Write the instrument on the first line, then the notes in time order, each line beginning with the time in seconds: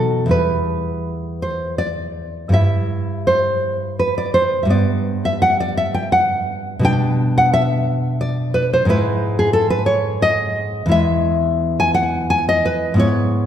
nylon-string guitar
Already playing: B2 F#3 D#4 A4
0.26 E2 G3 E4
0.31 B4
1.42 C5
1.78 D5
2.49 G2 G3 E4
2.53 E5
3.27 C5
3.99 B4
4.18 D5
4.34 C5
4.63 G2 G3 E5
4.69 B3 D5
5.25 E5
5.42 F#5
5.60 D5
5.77 E5
5.94 G5
6.12 F#5
6.79 B2 G3 D4
6.85 G5
7.38 F#5
7.54 E5
8.21 D5
8.54 B4
8.73 C5
8.85 G#2 G#3 E4
8.90 B4
9.39 G#4
9.53 A4
9.70 B4
9.86 C#5
10.22 D#5
10.86 E2 G#3 E4
10.91 E5
11.80 G#5
11.94 F#5
12.30 G#5
12.49 D#5
12.65 B4
12.94 G#2 B3 E4
13.00 C#5